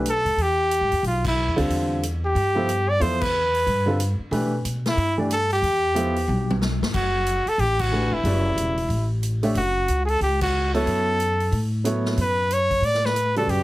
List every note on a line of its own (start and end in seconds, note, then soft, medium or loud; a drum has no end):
0.00 0.22 B1 medium
0.06 0.44 A4 loud
0.06 closed hi-hat medium
0.25 0.36 D2 medium
0.25 open hi-hat soft
0.37 0.78 E2 medium
0.37 open hi-hat soft
0.42 1.06 G4 loud
0.71 closed hi-hat medium
0.81 0.91 G2 medium
0.91 1.02 D#2 medium
0.91 open hi-hat soft
1.03 1.44 B1 medium
1.03 1.24 F4 medium
1.03 open hi-hat soft
1.25 1.57 E4 medium
1.25 kick medium
1.25 crash medium
1.48 1.58 E2 medium
1.56 1.69 D2 medium
1.56 1.99 D3 medium
1.56 2.00 G3 medium
1.56 2.00 C4 medium
1.56 2.00 F4 medium
1.56 2.00 A4 medium
1.56 open hi-hat soft
1.69 2.32 E2 medium
1.69 open hi-hat soft
2.03 closed hi-hat medium
2.26 2.91 G4 medium
2.35 2.97 G2 medium
2.35 open hi-hat soft
2.55 2.67 F3 medium
2.55 2.67 B3 medium
2.55 2.67 E4 medium
2.55 2.67 A4 medium
2.55 2.68 C5 medium
2.69 closed hi-hat medium
2.90 3.03 D5 loud
3.00 3.63 E2 medium
3.00 3.19 F3 medium
3.00 3.19 B3 medium
3.00 3.19 E4 medium
3.00 3.19 A4 medium
3.00 3.19 C5 medium
3.00 3.23 C5 medium
3.00 open hi-hat soft
3.21 4.20 B4 medium
3.21 kick medium
3.21 crash medium
3.55 open hi-hat soft
3.66 4.16 G2 medium
3.66 open hi-hat soft
3.86 3.97 D3 medium
3.86 3.98 G3 medium
3.86 3.98 C4 medium
3.86 3.98 F4 medium
3.86 3.98 A4 medium
4.00 closed hi-hat medium
4.19 muted upright bass stroke soft
4.31 4.62 B2 medium
4.31 4.50 E3 medium
4.31 4.50 A3 medium
4.31 4.50 D4 medium
4.31 4.51 G4 medium
4.31 4.51 B4 medium
4.31 open hi-hat medium
4.65 4.95 B2 medium
4.65 closed hi-hat medium
4.86 5.17 E4 medium
4.86 snare medium
4.86 open hi-hat soft
4.97 5.59 G2 medium
4.97 open hi-hat soft
5.17 5.29 E3 medium
5.17 5.29 A3 medium
5.17 5.29 D4 medium
5.17 5.29 G4 medium
5.17 5.29 D5 medium
5.31 5.50 A4 loud
5.31 closed hi-hat medium
5.51 6.58 G4 medium
5.51 open hi-hat soft
5.62 6.25 E2 medium
5.62 open hi-hat soft
5.95 6.13 F3 medium
5.95 6.14 B3 medium
5.95 6.14 E4 medium
5.95 6.14 A4 medium
5.95 6.14 C5 medium
5.95 closed hi-hat medium
6.16 open hi-hat soft
6.28 6.77 B1 medium
6.28 high tom soft
6.51 high tom medium
6.62 snare medium
6.81 6.93 G1 medium
6.81 snare medium
6.94 7.43 F#1 medium
6.94 7.50 F#4 medium
6.94 kick medium
6.94 crash medium
7.26 closed hi-hat medium
7.46 7.62 A4 medium
7.46 muted upright bass stroke soft
7.46 open hi-hat soft
7.58 8.08 A1 medium
7.58 7.82 G4 loud
7.58 open hi-hat soft
7.79 8.15 F#4 medium
7.79 kick medium
7.79 crash medium
7.91 8.10 E3 medium
7.91 8.10 A3 soft
7.91 8.10 D4 medium
7.91 8.11 G4 soft
7.91 8.11 B4 medium
8.11 8.23 F1 medium
8.11 9.11 E4 medium
8.23 8.54 F#1 medium
8.23 8.74 C#3 medium
8.23 8.73 G3 medium
8.23 8.74 F#4 medium
8.23 8.74 B4 medium
8.23 8.74 D5 medium
8.23 open hi-hat soft
8.56 8.87 E1 medium
8.56 closed hi-hat medium
8.78 open hi-hat soft
8.89 9.52 A1 medium
8.89 open hi-hat soft
9.23 closed hi-hat medium
9.43 9.54 A3 medium
9.43 9.54 D4 medium
9.43 9.55 G4 medium
9.43 9.55 C#5 medium
9.43 9.55 E5 medium
9.43 open hi-hat soft
9.55 9.86 F#1 medium
9.55 10.01 F#4 medium
9.55 open hi-hat soft
9.88 10.19 C#2 medium
9.88 closed hi-hat medium
10.05 10.11 G#4 medium
10.05 open hi-hat soft
10.09 10.22 A4 loud
10.21 10.83 C#2 medium
10.21 10.41 G4 medium
10.21 open hi-hat soft
10.41 10.72 F#4 medium
10.41 kick medium
10.41 crash medium
10.74 11.17 F#3 medium
10.74 11.17 B3 medium
10.74 11.17 E4 medium
10.74 11.69 A4 medium
10.74 11.17 A4 medium
10.74 11.18 C#5 medium
10.74 open hi-hat soft
10.86 11.49 F#2 medium
10.86 open hi-hat soft
11.20 closed hi-hat medium
11.40 open hi-hat soft
11.52 12.14 A2 medium
11.52 open hi-hat soft
11.84 12.17 F#3 medium
11.84 12.18 B3 medium
11.84 12.18 E4 medium
11.84 12.18 A4 medium
11.84 12.18 C#5 medium
11.84 closed hi-hat medium
12.05 snare soft
12.17 12.79 F#2 medium
12.17 open hi-hat soft
12.21 12.55 B4 medium
12.51 12.87 C#5 loud
12.51 closed hi-hat medium
12.71 kick medium
12.71 open hi-hat soft
12.81 13.44 A2 medium
12.81 13.07 D5 loud
12.81 open hi-hat soft
12.94 snare soft
13.05 13.37 B4 loud
13.05 snare medium
13.16 closed hi-hat medium
13.36 13.63 C#3 medium
13.36 13.63 G3 medium
13.36 13.63 F#4 medium
13.36 13.52 A4 medium
13.36 13.63 B4 medium
13.36 13.63 D5 medium
13.36 open hi-hat soft
13.47 13.63 F#2 medium
13.47 13.63 G4 medium
13.47 open hi-hat medium